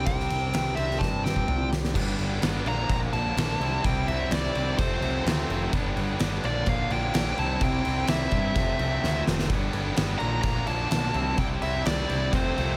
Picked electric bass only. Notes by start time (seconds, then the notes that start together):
0.07 C2
0.31 C2
0.54 C2
0.77 C2
1.01 G2
1.48 C2
1.72 C2
1.95 G1
2.19 G1
2.42 G1
2.65 A#1
2.89 A#1
3.12 A#1
3.37 A#1
3.59 C2
3.85 C2
4.08 C2
4.31 C2
4.55 C2
4.79 F1
5.01 C2
5.25 D2
5.49 F1
5.73 G1
5.96 G1
6.20 G1
6.44 A#1
6.67 A#1
6.91 A#1
7.14 A#1
7.38 C2
7.61 C2
7.85 C2
8.08 C2
8.32 G2
8.56 F1
8.79 C2
9.03 D2
9.27 F1
9.50 G1
9.73 G1
9.97 G1
10.21 A#1
10.44 A#1
10.68 A#1
10.91 B1
11.14 C2
11.38 C2
11.63 C2
11.86 C2
12.10 C2
12.33 F1
12.58 C2